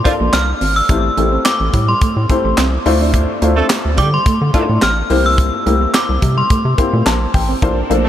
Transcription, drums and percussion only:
0.05 kick loud
0.05 closed hi-hat medium
0.33 snare loud
0.33 clap medium
0.33 closed hi-hat medium
0.61 open hi-hat medium
0.89 kick loud
0.89 closed hi-hat medium
1.18 closed hi-hat medium
1.45 snare loud
1.45 clap loud
1.45 closed hi-hat loud
1.73 kick loud
1.73 closed hi-hat medium
2.01 kick loud
2.01 closed hi-hat medium
2.29 kick medium
2.29 closed hi-hat medium
2.58 snare loud
2.58 clap loud
2.58 closed hi-hat medium
2.86 open hi-hat medium
3.14 kick loud
3.14 closed hi-hat medium
3.42 closed hi-hat medium
3.70 snare loud
3.70 clap loud
3.70 closed hi-hat loud
3.98 kick loud
3.98 closed hi-hat medium
4.26 kick loud
4.26 closed hi-hat loud
4.54 kick loud
4.54 closed hi-hat medium
4.82 snare loud
4.82 clap medium
4.82 closed hi-hat medium
5.10 open hi-hat medium
5.38 kick loud
5.38 closed hi-hat medium
5.67 closed hi-hat medium
5.94 snare loud
5.94 clap loud
5.94 closed hi-hat loud
6.22 kick loud
6.22 closed hi-hat medium
6.50 kick loud
6.50 closed hi-hat medium
6.78 kick medium
6.78 closed hi-hat medium
7.06 snare loud
7.06 clap medium
7.06 closed hi-hat medium
7.34 kick loud
7.34 open hi-hat medium
7.62 kick loud
7.62 closed hi-hat medium
7.91 closed hi-hat medium

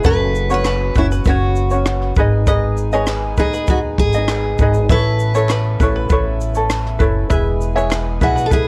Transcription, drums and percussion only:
0.04 kick loud
0.04 shaker medium
0.35 shaker medium
0.50 shaker soft
0.65 cross-stick loud
0.65 clap medium
0.65 shaker medium
0.95 kick medium
0.95 shaker soft
1.12 shaker soft
1.25 kick medium
1.25 shaker medium
1.56 shaker soft
1.71 shaker soft
1.86 cross-stick loud
1.86 clap medium
1.86 shaker medium
2.01 cross-stick soft
2.16 kick medium
2.16 shaker soft
2.47 kick loud
2.47 shaker medium
2.77 shaker medium
2.92 shaker medium
3.07 cross-stick loud
3.07 clap medium
3.07 shaker medium
3.37 kick medium
3.37 shaker soft
3.54 shaker soft
3.67 kick medium
3.67 shaker medium
3.98 kick medium
3.98 shaker soft
4.13 shaker soft
4.28 cross-stick loud
4.28 clap medium
4.28 shaker medium
4.58 kick medium
4.58 shaker soft
4.73 shaker medium
4.89 kick loud
4.89 shaker medium
5.19 shaker medium
5.35 shaker medium
5.49 cross-stick loud
5.49 clap medium
5.49 shaker medium
5.80 kick medium
5.80 shaker soft
6.09 kick medium
6.09 shaker medium
6.41 shaker soft
6.55 shaker soft
6.70 cross-stick loud
6.70 clap medium
6.70 shaker medium
6.86 cross-stick soft
7.00 kick medium
7.00 shaker soft
7.31 kick loud
7.31 shaker medium
7.61 shaker medium
7.77 shaker medium
7.91 cross-stick loud
7.91 clap medium
7.91 shaker medium
8.21 kick medium
8.21 shaker soft
8.38 shaker soft
8.52 kick medium
8.52 shaker medium

